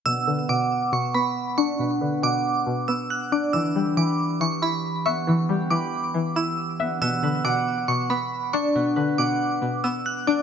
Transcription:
X:1
M:4/4
L:1/8
Q:1/4=138
K:Bm
V:1 name="Synth bell"
e'2 d'2 c' b2 c' | z2 d'3 e' f' d' | e'2 d'2 c' b2 c' | z2 d'3 e'3 |
e'2 d'2 c' b2 c' | z2 d'3 e' f' d' |]
V:2 name="Harp"
B, B f4- f D | B, B f4- f D | E, G b4- b B, | E, G b4- b B, |
B, B f4- f D | B, B f4- f D |]
V:3 name="Synth pluck" clef=bass
B,, D, B,,2 B,, B,2 D | B,, D, B,,2 B,, B,2 D | E, G, E,2 E, E2 e | E, G, E,2 E, E2 e |
B,, D, B,,2 B,, B,2 D | B,, D, B,,2 B,, B,2 D |]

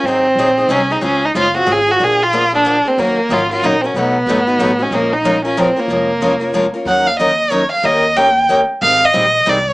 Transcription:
X:1
M:3/4
L:1/16
Q:"Swing" 1/4=185
K:Bbm
V:1 name="Violin"
C8 D2 E2 | D2 E2 F2 G2 A2 G2 | A2 F4 =D4 C2 | B,4 F2 F2 E3/2 C/2 D2 |
=B,8- B,2 D2 | B,2 E4 D2 C2 B,2- | B,8- B,2 z2 | [K:Abdor] g2 f2 e4 d2 f2 |
e4 =g4 z4 | f2 e6 =d2 _d2 |]
V:2 name="Steel-string acoustic guitar"
[E,G,CEA]2 z2 [E,G,CEA]2 [CEA]2 [E,G,CEA]2 [CEA]2 | [D,A,CFA]2 z2 [D,A,CFA]2 [CFA]2 [D,A,CFA]2 [CFA]2 | [=D,F,B,=DA]2 z2 [D,F,B,DA]2 [B,DA]2 [D,F,B,DA]2 [B,DA]2 | [E,B,DGB]2 z2 [E,B,DGB]2 [DGB]2 [E,B,DGB]2 [DGB]2 |
[=B,,^F,=A,^D^F]2 z2 [B,,F,A,DF]2 [A,DF]2 [B,,F,A,DF]2 [A,DF]2 | [F,A,DFB]2 z2 [F,A,DFB]2 [DFB]2 [F,A,DFB]2 [DFB]2 | [F,A,DFB]2 z2 [F,A,DFB]2 [DFB]2 [F,A,DFB]2 [DFB]2 | [K:Abdor] [E,G,DEB]2 z2 [E,G,DEB]2 z2 [E,G,DEB]2 z2 |
[E,B,D=GB]2 z2 [E,B,DGB]2 z2 [E,B,DGB]2 z2 | [E,=G,=CEA]2 z2 [E,G,CEA]2 z2 [E,G,CEA]2 z2 |]
V:3 name="Steel-string acoustic guitar"
z12 | z12 | z12 | [E,G,DEB]2 z2 [E,G,DEB]2 z2 [E,G,DEB]2 z2 |
[=B,,^F,=A,^D^F=B]2 z2 [B,,F,A,DFB]2 z2 [B,,F,A,DFB]2 z2 | [F,A,DFB]2 z2 [F,A,DFB]2 z2 [F,A,DFB]2 z2 | [F,A,DFB]2 z2 [F,A,DFB]2 z2 [F,A,DFB]2 z2 | [K:Abdor] [E,G,DEB]2 z2 [E,G,DEB]2 z2 [E,G,DEB]2 z2 |
[E,B,D=GB]2 z2 [E,B,DGB]2 z2 [E,B,DGB]2 z2 | [E,=G,=CEA]2 z2 [E,G,CEA]2 z2 [E,G,CEA]2 z2 |]
V:4 name="Upright bass" clef=bass
A,,,4 B,,,4 C,,4 | D,,4 G,,,4 A,,,4 | B,,,12 | E,,4 A,,,4 B,,,4 |
=B,,,4 A,,,4 =A,,,4 | B,,,12 | F,,,12 | [K:Abdor] E,,12 |
E,,12 | A,,,4 B,,,4 =C,,4 |]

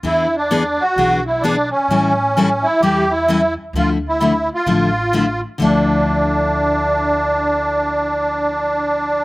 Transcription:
X:1
M:4/4
L:1/8
Q:"Swing" 1/4=130
K:Dm
V:1 name="Accordion"
E D2 ^F2 E D ^C- | ^C3 E G E2 z | F E2 F4 z | D8- |
D8 |]
V:2 name="Steel-string acoustic guitar"
[E,=B,D^G] z [E,B,DG] z [E,B,DG] z [E,B,DG] z | [E,G,^CEA] z [E,G,CEA] z [E,G,CEA] z [E,G,CEA] z | [D,F,A,E] z [D,F,A,E] z [D,F,A,E] z [D,F,A,E] z | [D,F,A,E]8- |
[D,F,A,E]8 |]
V:3 name="Upright bass" clef=bass
E,,4 =B,,,4 | A,,,4 E,,4 | D,,4 A,,,4 | D,,8- |
D,,8 |]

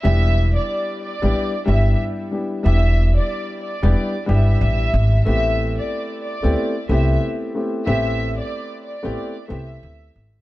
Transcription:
X:1
M:4/4
L:1/16
Q:"Swing 16ths" 1/4=92
K:Ephr
V:1 name="Violin section"
e3 d3 d4 e2 z4 | e3 d3 d4 e6 | e3 d3 d4 e2 z4 | e3 d3 d4 e6 |]
V:2 name="Grand piano"
[G,B,DEG]6 z [G,B,DEG]2 z [G,B,DEG]4 [G,B,DEG]2 | [G,B,DEG]6 z [G,B,DEG]2 z [G,B,DEG]6 | [A,B,CEG]6 z [A,B,CEG]2 z [A,B,CEG]4 [A,B,CEG]2 | [A,B,CEG]6 z [A,B,CEG]2 z [A,B,CEG]6 |]
V:3 name="Upright bass" clef=bass
E,,,4 z3 A,,, z2 G,,,2 z4 | E,,,4 z3 E,,, z2 G,,,2 A,,,2 ^G,,,2 | A,,,4 z3 D,, z2 C,,2 z4 | A,,,4 z3 A,,, z2 C,,2 D,,2 ^G,,,2 |]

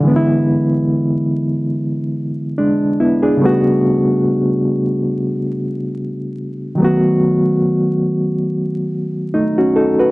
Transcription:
X:1
M:4/4
L:1/16
Q:"Swing 16ths" 1/4=71
K:Edor
V:1 name="Reed electric piano"
z12 [^G,D]2 [B,E] [D^G]- | [D^G] z12 z3 | z12 [A,^D] [CF] [DA] [FB] |]
V:2 name="Reed electric piano"
[D,E,^G,B,DE]16 | [C,G,A,B,F]16 | [^D,F,A,B,F]16 |]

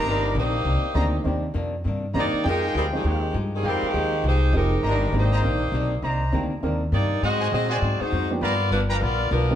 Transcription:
X:1
M:4/4
L:1/8
Q:"Swing" 1/4=201
K:Cm
V:1 name="Trumpet section"
[cdeb]2 z4 [cdeb] z | z6 [cdeb] z | [Aefg]4- [Aefg] z3 | [Gefg]4- [Gefg] z3 |
[cdeb]3 [cdeb] z4 | [cdeb]3 z4 z | z [ce_ga] z [cega] z4 | [=Bfg^a] z2 [Bfga] z4 |]
V:2 name="Saxophone section"
[G,DEB]2 [B,EGc]6 | z6 [B,EGd]2 | [A,EGB]2 [G,CEB] [E,G,CA] [E,A,CG]2 z [E,G,CA] | [G,CEB] [E,A,CG]3 [A,EGc]2 [A,EGB]2 |
[G,DEB]2 [B,EGc]6 | z6 [B,EGd]2 | [C_GAe]2 [CGAe] [CGAd]2 [A,EGc]2 z | [=B,F^Ad]2 [F,^A,D=B] [F,A,DB] [B,FAd]2 [F,B,DA]2 |]
V:3 name="Upright piano"
[E,B,CDG] z4 z [E,B,CDG]2 | [E,B,CDG] z4 z [E,B,CDG]2 | [F,A,CEG] z2 [F,A,CEG] z4 | z6 [F,A,CEG]2 |
z2 [E,B,CDG] z [E,B,CDB] z3 | z2 [E,B,CDG] z [E,B,CDB] z3 | z6 z [F,B,=B,DG] | z6 z [E,^A,CDG] |]
V:4 name="Hollow-body jazz guitar"
[C,E,B,D] z [C,E,B,D] z [C,E,B,D] z [C,E,B,D] z | [C,E,B,D] z [C,E,B,D] z [C,E,B,D] z [C,E,B,D] z | [F,A,EG] z [F,A,EG] z [F,A,EG] z [F,A,EG] z | [F,A,EG] z [F,A,EG] z [F,A,EG] z [F,A,EG] z |
[C,E,B,D] z [C,E,B,D] z [C,E,B,D] z [C,E,B,D] z | [C,E,B,D] z [C,E,B,D] z [C,E,B,D] z [C,E,B,D] z | [A,,_G,CE] z [A,,G,CE] z [A,,G,CE] z [A,,G,CE] z | [G,=B,F^A] z [G,B,FA] z [G,B,FA] z [G,B,FA] z |]
V:5 name="Upright bass" clef=bass
G,,,2 B,,,2 C,, z D,,2 | E,,2 F,,2 G,,2 ^F,, z | F,,2 D,,2 E,,2 G,,2 | F,, z E,,2 C,,2 F,,,2 |
G,,,2 A,,,2 B,,,2 =B,,,2 | C,,2 D,,2 E,,2 G,,2 | A,,2 B,,2 A,, z F,,2 | G,,2 G,,,2 ^A,,,2 =B,,,2 |]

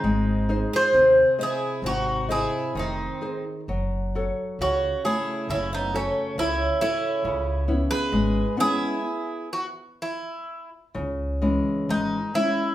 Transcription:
X:1
M:2/4
L:1/16
Q:1/4=66
K:C#m
V:1 name="Bouzouki"
D3 ^B3 G2 | F2 G2 D3 z | z4 F2 G2 | E D C2 E2 E2- |
E3 B3 G2- | G2 F2 E3 z | z4 D2 E2 |]
V:2 name="Nylon-string guitar"
G,2 [DG^B]2 ^B,,2 [GBd]2 | ^B,,2 [G^Bd]2 D,2 [DGB]2 | F,2 [FAc]2 C,2 [A,Fc]2 | C,2 [FAc]2 C,2 [FAc]2 |
C,2 [B,CE]2 G,2 [B,CE]2 | z8 | C,2 [E,G,C]2 G,2 [G,CE]2 |]
V:3 name="Twelve-string acoustic guitar"
^B,3 G3 E2 | D2 E2 ^B,3 z | z4 C2 E2 | C B, A,2 C2 C2- |
C3 G3 E2- | E2 z6 | z8 |]
V:4 name="Upright bass" clef=bass
G,,,4 D,,2 z2 | G,,,4 ^E,,,2 z2 | F,,,4 C,,2 z2 | F,,,4 C,,2 z2 |
C,,4 G,,,2 z2 | z8 | C,,4 G,,,2 z2 |]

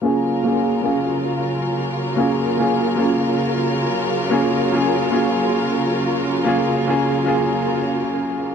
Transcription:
X:1
M:4/4
L:1/16
Q:"Swing 16ths" 1/4=112
K:F#
V:1 name="Grand piano"
[A,CEG]3 [A,CEG]3 [A,CEG] z8 z | [A,CEG]3 [A,CEG]3 [A,CEG] z8 z | [A,CEG]3 [A,CEG]3 [A,CEG] z8 z | [A,CEG]3 [A,CEG]3 [A,CEG] z8 z |]
V:2 name="String section"
[C,F,EA]16- | [C,F,EA]16- | [C,F,EA]16- | [C,F,EA]16 |]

